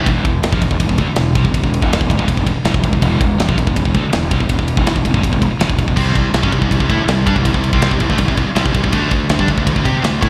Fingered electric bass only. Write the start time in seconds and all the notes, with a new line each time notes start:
0.06 E1
0.25 E1
0.44 E1
0.52 A#1
0.62 E1
0.71 E1
0.80 E1
0.89 E1
0.98 D2
1.07 muted fingered electric bass stroke
1.16 E1
1.35 C2
1.44 E1
1.54 E1
1.63 E1
1.82 E1
2.01 E1
2.10 E1
2.19 G1
2.28 E1
2.37 E1
2.46 E1
2.55 muted fingered electric bass stroke
2.65 E1
2.74 E1
2.83 E1
2.93 E1
3.02 E1
3.20 E1
3.40 E1
3.49 A#1
3.58 E1
3.67 E1
3.76 E1
3.85 E1
3.95 D2
4.04 muted fingered electric bass stroke
4.14 E1
4.31 C2
4.40 E1
4.50 E1
4.59 E1
4.77 E1
4.96 E1
5.05 E1
5.14 G1
5.23 E1
5.33 E1
5.42 E1
5.51 muted fingered electric bass stroke
5.60 E1
5.69 E1
5.78 E1
5.88 E1
5.97 C2
6.15 C2
6.33 C2
6.43 F#2
6.52 C2
6.61 C2
6.71 C2
6.80 C2
6.89 A2
6.99 muted fingered electric bass stroke
7.08 C2
7.27 G2
7.36 C2
7.45 C2
7.54 C2
7.73 C2
7.91 C2
8.01 C2
8.09 D2
8.19 C2
8.28 C2
8.37 C2
8.46 muted fingered electric bass stroke
8.55 C2
8.65 C2
8.75 C2
8.84 C2
8.93 D2
9.11 D2
9.30 D2
9.39 G2
9.48 D2
9.58 D2
9.67 D2
9.76 D2
9.85 C3
9.95 muted fingered electric bass stroke
10.03 D2
10.22 A2